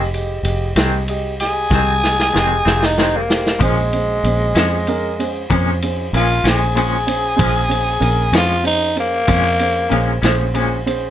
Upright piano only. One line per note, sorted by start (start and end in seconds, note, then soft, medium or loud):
0.14 0.37 G4 medium
0.14 0.37 G#4 medium
0.14 0.38 D#5 medium
0.43 0.68 G4 medium
0.43 0.69 G#4 medium
0.43 0.69 D#5 medium
0.76 1.00 G4 medium
0.76 1.00 G#4 medium
0.76 1.00 D#5 medium
1.09 1.33 G4 medium
1.09 1.33 G#4 medium
1.09 1.33 D#5 medium
1.40 1.64 G4 medium
1.40 1.64 G#4 soft
1.40 1.64 D#5 medium
1.71 1.95 G4 medium
1.71 1.95 G#4 medium
1.71 1.96 D#5 medium
2.03 2.27 G4 soft
2.03 2.27 G#4 soft
2.03 2.27 D#5 medium
2.34 2.58 G4 medium
2.34 2.58 G#4 medium
2.34 2.58 D#5 medium
2.67 2.90 G4 medium
2.67 2.90 G#4 soft
2.67 2.90 F5 medium
2.97 3.21 G4 soft
2.97 3.22 G#4 soft
2.97 3.21 C5 medium
3.28 3.53 G4 medium
3.28 3.52 G#4 soft
3.28 3.53 C5 medium
3.61 3.85 C#4 medium
3.61 3.85 G#4 medium
3.61 3.85 C5 medium
3.93 4.17 C#4 soft
3.93 4.17 G#4 soft
3.93 4.17 C5 soft
4.25 4.49 C#4 soft
4.25 4.48 G#4 soft
4.25 4.48 C5 medium
4.57 4.80 C#4 medium
4.57 4.80 G#4 medium
4.57 4.80 C5 medium
4.88 5.11 C#4 medium
4.88 5.12 G#4 medium
4.88 5.12 A#4 medium
5.19 5.43 C#4 medium
5.19 5.43 G#4 medium
5.19 5.43 C5 medium
5.51 5.74 C#4 medium
5.51 5.74 G#4 medium
5.51 5.75 C5 medium
5.83 6.06 C#4 medium
5.83 6.06 G#4 medium
5.83 6.06 C5 medium
6.14 6.37 C#4 medium
6.14 6.37 G#4 soft
6.14 6.38 A#4 soft
6.45 6.68 C#4 soft
6.45 6.68 G#4 soft
6.45 6.69 C5 medium
6.75 7.00 C#4 soft
6.75 6.99 G#4 soft
6.75 6.99 C5 medium
7.07 7.31 C#4 medium
7.07 7.31 G#4 soft
7.07 7.31 C5 medium
7.36 7.62 C#4 medium
7.36 7.62 G#4 medium
7.36 7.62 C5 medium
7.69 7.94 C#4 medium
7.69 7.94 G#4 medium
7.69 7.94 C5 medium
8.00 8.25 C#4 medium
8.00 8.25 G#4 medium
8.00 8.25 A#4 medium
8.32 8.57 C#4 soft
8.32 8.57 G#4 soft
8.32 8.57 C5 medium
8.63 8.88 C#4 medium
8.63 8.88 G#4 medium
8.63 8.88 C5 medium
8.96 9.20 C#4 medium
8.96 9.20 G#4 soft
8.96 9.20 C5 medium
9.28 9.52 C#4 medium
9.28 9.52 G#4 medium
9.28 9.52 C5 medium
9.60 9.84 C#4 medium
9.60 9.83 G#4 soft
9.60 9.84 C5 medium
9.90 10.14 C#4 medium
9.90 10.15 G#4 medium
9.90 10.15 C5 medium
10.24 10.47 C#4 medium
10.24 10.47 G#4 medium
10.24 10.47 C5 medium
10.54 10.78 C#4 medium
10.54 10.78 G#4 medium
10.54 10.78 C5 medium
10.86 11.10 C#4 medium
10.86 11.10 G#4 medium
10.86 11.10 C5 medium